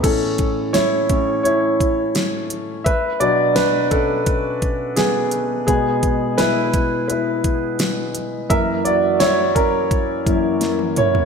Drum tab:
CC |x---------------|----------------|----------------|----------------|
HH |x-x-x-x-x-x-x-x-|x-x-x-x-x-x-x-x-|x-x-x-x-x-x-x-x-|x-x-x-x-x-x-x-x-|
SD |----o-------o---|----o-------o---|----o-------o---|----o-------o---|
T1 |----------------|----------------|----------------|-------------o--|
T2 |----------------|----------------|----------------|--------------o-|
FT |----------------|----------------|----------------|---------------o|
BD |o-o---o---o-----|o-----o-o-o-----|o-o---o---o-----|o-----o-o-o-----|